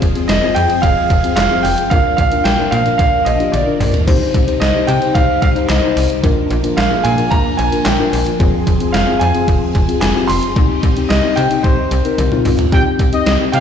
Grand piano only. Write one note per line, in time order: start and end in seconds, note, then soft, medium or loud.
0.28 0.53 D#5 loud
0.55 0.83 G5 loud
0.82 1.34 F5 loud
1.36 1.64 F5 loud
1.63 1.91 G5 loud
1.90 2.15 F5 loud
2.17 2.43 F5 loud
2.44 2.73 G5 loud
2.71 2.96 F5 medium
2.98 3.24 F5 medium
3.25 3.53 D#5 medium
3.52 3.90 D5 medium
4.60 4.89 D#5 medium
4.87 5.16 G5 loud
5.15 5.40 F5 loud
5.42 5.48 F5 loud
5.69 6.07 D#5 medium
6.77 7.02 F5 medium
7.04 7.32 G#5 loud
7.31 7.59 A#5 loud
7.57 7.86 G#5 loud
7.85 8.23 G5 medium
8.93 9.21 F5 medium
9.19 9.45 G#5 loud
10.00 10.29 G#5 medium
10.27 10.53 C6 loud
11.09 11.35 D#5 loud
11.36 11.62 G5 loud
11.63 12.14 C5 medium
13.52 13.60 G5 loud